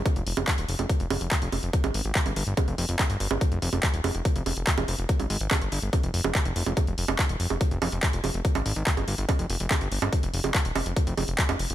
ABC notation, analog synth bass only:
X:1
M:4/4
L:1/16
Q:1/4=143
K:Ebmix
V:1 name="Analog synth bass" clef=bass
z F,,, F,,, F,,, z E,,, F,,, F,,, z F,,, F,,, F,,, z F,,, F,,, F,,, | z A,,, A,,, A,,, z G,,, G,,, G,,, z F,,, F,,, F,,, z G,,, G,,, G,,, | z F,,, F,,, F,,, z E,,, F,,, F,,, z F,,, F,,, F,,, z F,,, F,,, F,,, | z A,,, A,,, A,,, z G,,, G,,, G,,, z F,,, F,,, F,,, z F,,, F,,, F,,, |
z F,,, F,,, F,,, z E,,, F,,, F,,, z F,,, F,,, F,,, z F,,, F,,, F,,, | z A,,, A,,, A,,, z G,,, G,,, G,,, z F,,, F,,, F,,, z G,,, G,,, G,,, | z F,,, F,,, F,,, z E,,, F,,, F,,, z F,,, F,,, F,,, z F,,, F,,, F,,, |]